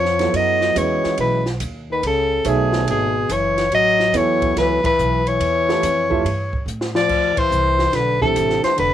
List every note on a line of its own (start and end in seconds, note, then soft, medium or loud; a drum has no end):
0.00 0.32 F2 medium
0.00 0.36 F3 medium
0.00 0.37 C#5 medium
0.05 snare soft
0.19 0.73 F#3 medium
0.19 0.73 B3 medium
0.19 0.73 E4 medium
0.19 0.74 A4 medium
0.19 0.74 C#5 medium
0.19 snare soft
0.19 ride soft
0.33 0.74 F#2 medium
0.33 0.79 F#3 medium
0.33 0.79 D#5 medium
0.33 ride medium
0.61 snare soft
0.76 1.02 E2 medium
0.76 1.18 E3 medium
0.76 1.40 G#3 medium
0.76 1.40 C#4 medium
0.76 1.41 F#4 medium
0.76 1.41 B4 medium
0.76 1.19 C#5 medium
0.76 1.41 D#5 medium
0.76 hi-hat pedal medium
0.76 ride medium
1.04 muted upright bass stroke soft
1.04 snare soft
1.17 1.59 B1 medium
1.17 1.45 E3 medium
1.17 1.45 B4 medium
1.17 ride medium
1.46 snare soft
1.60 2.01 D#2 medium
1.60 hi-hat pedal medium
1.60 ride medium
1.91 2.03 D#3 medium
1.91 2.04 B4 medium
2.02 2.43 C#2 medium
2.02 2.48 C#3 medium
2.02 ride medium
2.07 2.49 A4 medium
2.44 2.86 B1 medium
2.44 2.88 B2 medium
2.44 3.10 D#3 medium
2.44 3.09 A3 medium
2.44 3.10 G#4 medium
2.44 2.89 G#4 medium
2.44 3.10 C#5 medium
2.44 3.10 E5 medium
2.44 hi-hat pedal medium
2.44 ride medium
2.73 snare medium
2.87 3.28 G#1 medium
2.87 3.32 B2 medium
2.87 3.33 G#4 medium
2.87 ride medium
3.29 3.70 F#1 medium
3.29 3.72 E3 medium
3.29 3.73 C#5 medium
3.29 hi-hat pedal soft
3.29 ride medium
3.58 snare soft
3.58 ride soft
3.71 4.12 A1 medium
3.71 4.16 F#3 medium
3.71 4.18 D#5 loud
3.71 ride medium
4.00 snare soft
4.13 4.54 E2 medium
4.13 4.56 E3 medium
4.13 4.78 F#3 medium
4.13 4.78 B3 medium
4.13 4.78 E4 medium
4.13 4.79 A4 medium
4.13 4.79 C#5 medium
4.13 4.57 C#5 medium
4.13 hi-hat pedal soft
4.13 ride medium
4.42 kick medium
4.42 ride soft
4.56 4.82 C#2 medium
4.56 4.83 E3 medium
4.56 4.83 B4 medium
4.56 snare soft
4.56 ride medium
4.84 5.25 E3 medium
4.84 5.29 B4 medium
4.84 muted upright bass stroke soft
4.84 kick medium
4.84 ride medium
4.99 5.39 B1 medium
4.99 hi-hat pedal medium
5.25 6.67 E3 medium
5.25 6.68 C#5 medium
5.25 ride soft
5.40 5.81 E2 medium
5.40 ride medium
5.69 5.81 A3 medium
5.69 5.82 E4 medium
5.69 5.82 F4 medium
5.69 5.82 G4 medium
5.69 5.82 C#5 medium
5.69 snare soft
5.82 6.24 F2 medium
5.82 hi-hat pedal medium
5.82 ride medium
6.10 6.23 A3 medium
6.10 6.24 E4 medium
6.10 6.24 F4 medium
6.10 6.24 G4 medium
6.10 6.24 E5 medium
6.10 kick medium
6.25 6.65 G2 medium
6.25 ride medium
6.53 kick medium
6.66 7.07 A2 medium
6.66 hi-hat pedal medium
6.81 snare medium
6.94 7.37 F3 medium
6.94 7.40 D5 loud
6.94 snare medium
7.09 7.35 D2 medium
7.09 kick medium
7.09 crash medium
7.36 7.95 E3 medium
7.36 7.97 C5 loud
7.36 muted upright bass stroke soft
7.36 kick medium
7.36 ride medium
7.51 7.92 C2 medium
7.51 hi-hat pedal medium
7.79 snare soft
7.93 8.34 B1 medium
7.93 8.21 D3 medium
7.93 8.21 B4 medium
7.93 snare soft
7.93 ride medium
8.21 8.61 C3 medium
8.21 8.75 E3 medium
8.21 8.75 A3 medium
8.21 8.76 D4 medium
8.21 8.76 G4 medium
8.21 8.61 A4 medium
8.21 8.76 C5 medium
8.21 kick medium
8.36 8.62 A1 medium
8.36 hi-hat pedal medium
8.36 ride medium
8.50 snare soft
8.63 8.76 E3 medium
8.63 8.77 C5 medium
8.63 muted upright bass stroke soft
8.63 snare soft
8.63 ride soft
8.77 8.94 F1 medium
8.77 8.94 D3 medium
8.77 8.94 B4 medium
8.77 ride medium